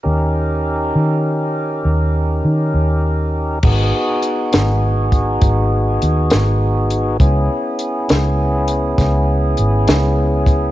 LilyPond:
<<
  \new Staff \with { instrumentName = "Tonewheel organ" } { \time 12/8 \key gis \minor \tempo 4. = 67 <cis' dis' g' ais'>1. | <b dis' fis' gis'>1. | <b cis' e' gis'>1. | }
  \new Staff \with { instrumentName = "Fingered electric bass" } { \clef bass \time 12/8 \key gis \minor dis,4. dis4. dis,4 dis8 dis,4. | gis,,8 r4 gis,,4. gis,,4 dis,8 gis,,4. | cis,8 r4 cis,4. cis,4 gis,,8 cis,4. | }
  \new DrumStaff \with { instrumentName = "Drums" } \drummode { \time 12/8 r4. r4. r4. r4. | <cymc bd>4 hh8 <hh sn>4 <hh bd>8 <hh bd>4 hh8 <hh sn>4 hh8 | <hh bd>4 hh8 <hh sn>4 hh8 <hh bd sn>4 hh8 <hh sn>4 <hh bd>8 | }
>>